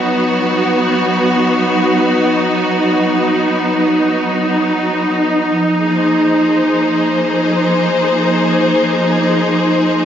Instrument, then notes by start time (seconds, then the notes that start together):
string section
Already playing: F#3 B3 D#4 F#4 B4
5.50 F3
5.73 A#3
5.78 G#4
5.96 C5